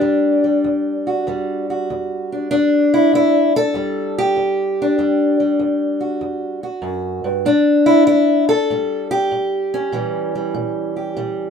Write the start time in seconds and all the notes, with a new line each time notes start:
Already playing: D4 G4
0.01 E2 G3
0.44 G3
0.64 E2
1.07 F#4
1.27 E2 G3
1.70 F#4
1.90 E2
2.32 D4
2.51 E2 D4
2.94 E4
3.13 E2 E4
3.56 A4
3.74 E2 G3
4.18 G4
4.36 E2
4.82 D4
4.98 E2 G3
5.40 G3
5.59 E2
6.00 F#4
6.21 E2
6.63 F#4
6.82 F#2
7.24 G2
7.45 A2 D4
7.86 E4
8.07 A2 E4
8.49 A4
8.70 A2 G3
9.11 G4
9.31 A2
9.74 C#4
9.92 A#2 E3 G3
10.35 G3
10.54 A#2
10.96 G4
11.16 A#2 G3